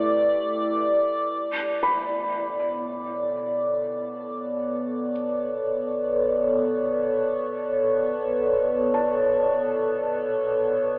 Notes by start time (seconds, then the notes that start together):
Already playing: A3 E4 G4 B4 D5
1.31 B2
1.51 B3
1.83 B5
1.90 A4
2.01 C#5
8.94 A5